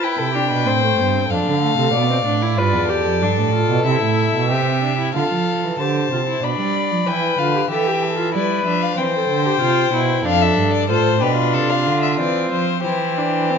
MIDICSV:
0, 0, Header, 1, 5, 480
1, 0, Start_track
1, 0, Tempo, 639659
1, 15, Time_signature, 4, 2, 24, 8
1, 8175, Tempo, 651466
1, 10155, End_track
2, 0, Start_track
2, 0, Title_t, "Violin"
2, 0, Program_c, 0, 40
2, 25, Note_on_c, 0, 79, 75
2, 976, Note_on_c, 0, 77, 73
2, 988, Note_off_c, 0, 79, 0
2, 1932, Note_off_c, 0, 77, 0
2, 1937, Note_on_c, 0, 74, 80
2, 2881, Note_off_c, 0, 74, 0
2, 2899, Note_on_c, 0, 76, 73
2, 3847, Note_off_c, 0, 76, 0
2, 3872, Note_on_c, 0, 77, 62
2, 4322, Note_off_c, 0, 77, 0
2, 4349, Note_on_c, 0, 81, 52
2, 4830, Note_on_c, 0, 83, 58
2, 4842, Note_off_c, 0, 81, 0
2, 5309, Note_on_c, 0, 79, 66
2, 5321, Note_off_c, 0, 83, 0
2, 5543, Note_on_c, 0, 77, 62
2, 5554, Note_off_c, 0, 79, 0
2, 5779, Note_off_c, 0, 77, 0
2, 5783, Note_on_c, 0, 76, 65
2, 6252, Note_off_c, 0, 76, 0
2, 6264, Note_on_c, 0, 74, 63
2, 6498, Note_off_c, 0, 74, 0
2, 6502, Note_on_c, 0, 76, 66
2, 6621, Note_on_c, 0, 77, 71
2, 6632, Note_off_c, 0, 76, 0
2, 6735, Note_on_c, 0, 79, 71
2, 6746, Note_off_c, 0, 77, 0
2, 7691, Note_off_c, 0, 79, 0
2, 7695, Note_on_c, 0, 77, 84
2, 7819, Note_on_c, 0, 76, 75
2, 7830, Note_off_c, 0, 77, 0
2, 8053, Note_off_c, 0, 76, 0
2, 8058, Note_on_c, 0, 74, 78
2, 8172, Note_off_c, 0, 74, 0
2, 8176, Note_on_c, 0, 72, 84
2, 8409, Note_on_c, 0, 71, 77
2, 8420, Note_off_c, 0, 72, 0
2, 8649, Note_on_c, 0, 69, 82
2, 8660, Note_off_c, 0, 71, 0
2, 8769, Note_on_c, 0, 77, 81
2, 8780, Note_off_c, 0, 69, 0
2, 9002, Note_off_c, 0, 77, 0
2, 9007, Note_on_c, 0, 76, 64
2, 9126, Note_off_c, 0, 76, 0
2, 9133, Note_on_c, 0, 74, 75
2, 9368, Note_off_c, 0, 74, 0
2, 9373, Note_on_c, 0, 72, 77
2, 9605, Note_off_c, 0, 72, 0
2, 9609, Note_on_c, 0, 72, 65
2, 10155, Note_off_c, 0, 72, 0
2, 10155, End_track
3, 0, Start_track
3, 0, Title_t, "Violin"
3, 0, Program_c, 1, 40
3, 11, Note_on_c, 1, 71, 59
3, 134, Note_on_c, 1, 69, 53
3, 145, Note_off_c, 1, 71, 0
3, 243, Note_off_c, 1, 69, 0
3, 247, Note_on_c, 1, 67, 55
3, 367, Note_off_c, 1, 67, 0
3, 378, Note_on_c, 1, 71, 62
3, 496, Note_on_c, 1, 72, 68
3, 507, Note_off_c, 1, 71, 0
3, 963, Note_off_c, 1, 72, 0
3, 967, Note_on_c, 1, 69, 68
3, 1437, Note_off_c, 1, 69, 0
3, 1448, Note_on_c, 1, 74, 73
3, 1935, Note_on_c, 1, 71, 71
3, 1946, Note_off_c, 1, 74, 0
3, 2158, Note_off_c, 1, 71, 0
3, 2163, Note_on_c, 1, 69, 72
3, 3353, Note_off_c, 1, 69, 0
3, 3379, Note_on_c, 1, 67, 64
3, 3854, Note_off_c, 1, 67, 0
3, 3866, Note_on_c, 1, 69, 58
3, 4350, Note_on_c, 1, 72, 51
3, 4361, Note_off_c, 1, 69, 0
3, 4822, Note_on_c, 1, 74, 61
3, 4833, Note_off_c, 1, 72, 0
3, 5303, Note_on_c, 1, 71, 63
3, 5314, Note_off_c, 1, 74, 0
3, 5774, Note_off_c, 1, 71, 0
3, 5779, Note_on_c, 1, 67, 53
3, 6023, Note_on_c, 1, 69, 56
3, 6034, Note_off_c, 1, 67, 0
3, 6256, Note_off_c, 1, 69, 0
3, 6261, Note_on_c, 1, 71, 62
3, 6725, Note_off_c, 1, 71, 0
3, 6729, Note_on_c, 1, 72, 72
3, 7673, Note_off_c, 1, 72, 0
3, 7688, Note_on_c, 1, 69, 73
3, 8164, Note_off_c, 1, 69, 0
3, 8177, Note_on_c, 1, 69, 68
3, 8407, Note_off_c, 1, 69, 0
3, 8412, Note_on_c, 1, 67, 57
3, 8517, Note_off_c, 1, 67, 0
3, 8522, Note_on_c, 1, 65, 71
3, 9586, Note_off_c, 1, 65, 0
3, 9608, Note_on_c, 1, 67, 62
3, 10155, Note_off_c, 1, 67, 0
3, 10155, End_track
4, 0, Start_track
4, 0, Title_t, "Viola"
4, 0, Program_c, 2, 41
4, 24, Note_on_c, 2, 64, 75
4, 264, Note_on_c, 2, 62, 67
4, 275, Note_off_c, 2, 64, 0
4, 495, Note_on_c, 2, 60, 60
4, 506, Note_off_c, 2, 62, 0
4, 623, Note_on_c, 2, 57, 59
4, 634, Note_off_c, 2, 60, 0
4, 745, Note_on_c, 2, 59, 60
4, 756, Note_off_c, 2, 57, 0
4, 858, Note_off_c, 2, 59, 0
4, 863, Note_on_c, 2, 60, 59
4, 908, Note_off_c, 2, 60, 0
4, 980, Note_on_c, 2, 62, 65
4, 1209, Note_off_c, 2, 62, 0
4, 1223, Note_on_c, 2, 57, 62
4, 1459, Note_on_c, 2, 59, 72
4, 1470, Note_off_c, 2, 57, 0
4, 1571, Note_off_c, 2, 59, 0
4, 1576, Note_on_c, 2, 60, 71
4, 1623, Note_off_c, 2, 60, 0
4, 1692, Note_on_c, 2, 62, 71
4, 1818, Note_on_c, 2, 64, 69
4, 1830, Note_off_c, 2, 62, 0
4, 1935, Note_on_c, 2, 65, 73
4, 1947, Note_off_c, 2, 64, 0
4, 2174, Note_on_c, 2, 67, 73
4, 2185, Note_off_c, 2, 65, 0
4, 2421, Note_on_c, 2, 62, 61
4, 2432, Note_off_c, 2, 67, 0
4, 2653, Note_off_c, 2, 62, 0
4, 2658, Note_on_c, 2, 65, 65
4, 2893, Note_off_c, 2, 65, 0
4, 2905, Note_on_c, 2, 64, 72
4, 3376, Note_off_c, 2, 64, 0
4, 3386, Note_on_c, 2, 60, 63
4, 3620, Note_off_c, 2, 60, 0
4, 3627, Note_on_c, 2, 62, 58
4, 3738, Note_off_c, 2, 62, 0
4, 3742, Note_on_c, 2, 64, 71
4, 3862, Note_off_c, 2, 64, 0
4, 3871, Note_on_c, 2, 65, 58
4, 4321, Note_off_c, 2, 65, 0
4, 4356, Note_on_c, 2, 67, 49
4, 4588, Note_off_c, 2, 67, 0
4, 4594, Note_on_c, 2, 65, 54
4, 4641, Note_off_c, 2, 65, 0
4, 4710, Note_on_c, 2, 64, 51
4, 4827, Note_off_c, 2, 64, 0
4, 4832, Note_on_c, 2, 62, 59
4, 5300, Note_off_c, 2, 62, 0
4, 5316, Note_on_c, 2, 64, 59
4, 5547, Note_off_c, 2, 64, 0
4, 5550, Note_on_c, 2, 65, 60
4, 5666, Note_off_c, 2, 65, 0
4, 5671, Note_on_c, 2, 67, 59
4, 5718, Note_off_c, 2, 67, 0
4, 5792, Note_on_c, 2, 69, 72
4, 5904, Note_on_c, 2, 67, 67
4, 5916, Note_off_c, 2, 69, 0
4, 6135, Note_off_c, 2, 67, 0
4, 6139, Note_on_c, 2, 65, 64
4, 6256, Note_off_c, 2, 65, 0
4, 6260, Note_on_c, 2, 64, 65
4, 6496, Note_off_c, 2, 64, 0
4, 6503, Note_on_c, 2, 62, 61
4, 6732, Note_off_c, 2, 62, 0
4, 6737, Note_on_c, 2, 60, 69
4, 6785, Note_off_c, 2, 60, 0
4, 6860, Note_on_c, 2, 69, 66
4, 7096, Note_on_c, 2, 67, 71
4, 7107, Note_off_c, 2, 69, 0
4, 7211, Note_off_c, 2, 67, 0
4, 7215, Note_on_c, 2, 65, 91
4, 7448, Note_off_c, 2, 65, 0
4, 7453, Note_on_c, 2, 64, 81
4, 7693, Note_on_c, 2, 62, 75
4, 7704, Note_off_c, 2, 64, 0
4, 8171, Note_off_c, 2, 62, 0
4, 8175, Note_on_c, 2, 65, 67
4, 8404, Note_off_c, 2, 65, 0
4, 8408, Note_on_c, 2, 62, 74
4, 9113, Note_off_c, 2, 62, 0
4, 9134, Note_on_c, 2, 60, 69
4, 9605, Note_off_c, 2, 60, 0
4, 9614, Note_on_c, 2, 64, 65
4, 9859, Note_on_c, 2, 62, 61
4, 9871, Note_off_c, 2, 64, 0
4, 10099, Note_on_c, 2, 60, 55
4, 10110, Note_off_c, 2, 62, 0
4, 10155, Note_off_c, 2, 60, 0
4, 10155, End_track
5, 0, Start_track
5, 0, Title_t, "Cello"
5, 0, Program_c, 3, 42
5, 135, Note_on_c, 3, 48, 69
5, 378, Note_on_c, 3, 47, 77
5, 390, Note_off_c, 3, 48, 0
5, 491, Note_on_c, 3, 45, 80
5, 502, Note_off_c, 3, 47, 0
5, 729, Note_off_c, 3, 45, 0
5, 734, Note_on_c, 3, 43, 79
5, 967, Note_off_c, 3, 43, 0
5, 975, Note_on_c, 3, 41, 67
5, 1022, Note_off_c, 3, 41, 0
5, 1095, Note_on_c, 3, 50, 74
5, 1327, Note_off_c, 3, 50, 0
5, 1331, Note_on_c, 3, 48, 82
5, 1447, Note_off_c, 3, 48, 0
5, 1454, Note_on_c, 3, 47, 76
5, 1685, Note_off_c, 3, 47, 0
5, 1690, Note_on_c, 3, 45, 75
5, 1933, Note_on_c, 3, 43, 89
5, 1945, Note_off_c, 3, 45, 0
5, 2048, Note_on_c, 3, 40, 73
5, 2059, Note_off_c, 3, 43, 0
5, 2289, Note_on_c, 3, 41, 75
5, 2300, Note_off_c, 3, 40, 0
5, 2412, Note_on_c, 3, 43, 81
5, 2423, Note_off_c, 3, 41, 0
5, 2537, Note_on_c, 3, 45, 83
5, 2548, Note_off_c, 3, 43, 0
5, 2773, Note_off_c, 3, 45, 0
5, 2778, Note_on_c, 3, 47, 78
5, 2895, Note_off_c, 3, 47, 0
5, 2899, Note_on_c, 3, 48, 84
5, 3017, Note_off_c, 3, 48, 0
5, 3024, Note_on_c, 3, 45, 72
5, 3257, Note_off_c, 3, 45, 0
5, 3262, Note_on_c, 3, 47, 78
5, 3383, Note_on_c, 3, 48, 80
5, 3395, Note_off_c, 3, 47, 0
5, 3860, Note_off_c, 3, 48, 0
5, 3865, Note_on_c, 3, 50, 73
5, 3913, Note_off_c, 3, 50, 0
5, 3982, Note_on_c, 3, 53, 59
5, 4228, Note_on_c, 3, 52, 64
5, 4239, Note_off_c, 3, 53, 0
5, 4343, Note_off_c, 3, 52, 0
5, 4348, Note_on_c, 3, 50, 70
5, 4584, Note_off_c, 3, 50, 0
5, 4589, Note_on_c, 3, 48, 61
5, 4820, Note_off_c, 3, 48, 0
5, 4825, Note_on_c, 3, 47, 66
5, 4944, Note_off_c, 3, 47, 0
5, 4947, Note_on_c, 3, 55, 64
5, 5182, Note_on_c, 3, 53, 59
5, 5194, Note_off_c, 3, 55, 0
5, 5300, Note_off_c, 3, 53, 0
5, 5305, Note_on_c, 3, 52, 61
5, 5538, Note_off_c, 3, 52, 0
5, 5543, Note_on_c, 3, 50, 66
5, 5776, Note_off_c, 3, 50, 0
5, 5780, Note_on_c, 3, 52, 68
5, 6261, Note_on_c, 3, 55, 71
5, 6272, Note_off_c, 3, 52, 0
5, 6489, Note_off_c, 3, 55, 0
5, 6493, Note_on_c, 3, 53, 69
5, 6732, Note_off_c, 3, 53, 0
5, 6738, Note_on_c, 3, 52, 61
5, 6970, Note_off_c, 3, 52, 0
5, 6974, Note_on_c, 3, 50, 75
5, 7209, Note_off_c, 3, 50, 0
5, 7214, Note_on_c, 3, 48, 67
5, 7446, Note_off_c, 3, 48, 0
5, 7450, Note_on_c, 3, 47, 72
5, 7686, Note_off_c, 3, 47, 0
5, 7691, Note_on_c, 3, 41, 82
5, 7928, Note_off_c, 3, 41, 0
5, 7932, Note_on_c, 3, 43, 71
5, 8174, Note_on_c, 3, 45, 72
5, 8185, Note_off_c, 3, 43, 0
5, 8413, Note_on_c, 3, 47, 75
5, 8424, Note_off_c, 3, 45, 0
5, 8645, Note_on_c, 3, 48, 68
5, 8657, Note_off_c, 3, 47, 0
5, 8889, Note_on_c, 3, 50, 75
5, 8901, Note_off_c, 3, 48, 0
5, 9133, Note_on_c, 3, 52, 65
5, 9144, Note_off_c, 3, 50, 0
5, 9366, Note_off_c, 3, 52, 0
5, 9371, Note_on_c, 3, 53, 65
5, 9613, Note_on_c, 3, 52, 76
5, 9624, Note_off_c, 3, 53, 0
5, 10155, Note_off_c, 3, 52, 0
5, 10155, End_track
0, 0, End_of_file